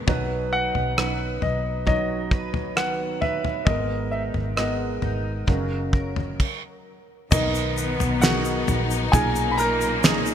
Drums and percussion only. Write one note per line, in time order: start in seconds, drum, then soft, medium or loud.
0.08 kick medium
0.08 floor tom medium
0.75 floor tom soft
0.98 cross-stick medium
1.42 floor tom medium
1.87 kick medium
1.87 floor tom soft
2.31 kick medium
2.54 floor tom medium
2.77 cross-stick medium
3.22 floor tom soft
3.45 floor tom medium
3.67 kick medium
3.67 floor tom medium
4.34 floor tom soft
4.57 cross-stick medium
5.02 floor tom soft
5.47 kick medium
5.47 floor tom soft
5.93 kick medium
6.16 floor tom soft
6.40 kick medium
6.40 crash medium
7.32 kick loud
7.32 floor tom loud
7.32 crash medium
7.32 shaker medium
7.55 shaker soft
7.77 shaker soft
8.00 floor tom medium
8.00 shaker soft
8.22 snare loud
8.22 shaker medium
8.45 shaker soft
8.68 floor tom medium
8.68 shaker soft
8.91 shaker soft
9.13 kick medium
9.13 floor tom medium
9.13 shaker medium
9.36 shaker medium
9.59 shaker soft
9.81 shaker soft
10.04 snare loud
10.04 shaker medium
10.26 shaker soft